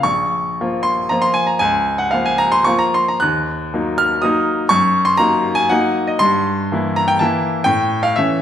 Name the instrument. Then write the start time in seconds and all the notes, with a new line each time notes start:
grand piano
0.03 A#1 C#6
0.61 F3 A#3 F4
0.83 C6
1.09 F3 A#3 F4 A#5
1.22 C6
1.34 G#5
1.47 A#5
1.59 C#2 G#5
1.98 F#5
2.11 F3 A#3 F4 F5
2.26 G#5
2.38 A#5
2.52 C6
2.64 F3 A#3 F4 C#6
2.79 A#5
2.94 C6
3.08 A#5
3.20 D#2 F#6
3.74 F#3 A#3 D#4
3.98 F6
4.22 F#3 A#3 D#4 D#6
4.69 F#2 C#6
5.05 C6
5.17 F#3 A#3 D#4 A#5
5.55 G#5
5.69 F#3 A#3 D#4 F#5
6.07 D#5
6.19 G2 C6
6.72 E3 A#3 E4
6.96 A#5
7.08 G5
7.19 E3 A#3 E4 A5
7.64 A2 G5
8.03 F5
8.16 E3 A3 C#4 E5